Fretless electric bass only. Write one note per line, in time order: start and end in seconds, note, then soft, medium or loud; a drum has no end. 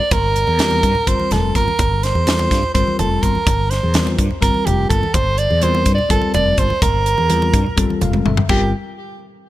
0.11 0.44 G1 medium
0.48 0.80 E2 medium
0.83 0.94 G2 medium
1.07 1.18 G1 medium
1.31 1.53 F1 medium
1.55 1.66 G1 loud
1.79 2.12 G1 medium
2.15 2.47 E2 medium
2.51 2.62 G2 medium
2.75 2.86 G1 medium
3.00 3.21 F1 medium
3.23 3.34 G1 loud
3.47 3.79 G1 medium
3.83 4.15 E2 medium
4.18 4.29 G2 medium
4.42 4.53 G1 medium
4.67 4.88 F1 medium
4.90 5.01 G1 medium
5.14 5.47 G1 medium
5.50 5.83 E2 medium
5.86 5.97 G2 medium
6.10 6.21 G1 medium
6.34 6.56 F1 medium
6.58 6.69 G1 loud
6.82 7.14 G1 loud
7.18 7.50 E2 medium
7.53 7.64 G2 loud
7.77 7.88 G1 loud
7.90 muted fretless electric bass stroke soft
8.02 8.23 F1 medium
8.25 8.36 G1 loud
8.49 8.72 G1 medium